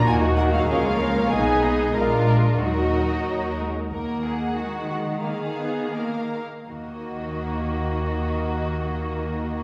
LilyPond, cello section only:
\new Staff \with { instrumentName = "Cello section" } { \time 2/4 \key ees \minor \tempo 4 = 91 ges'4 aes'8 bes'8 | aes'4 bes'4 | ges'4. r8 | ees2~ |
ees4. r8 | ees2~ | ees2 | }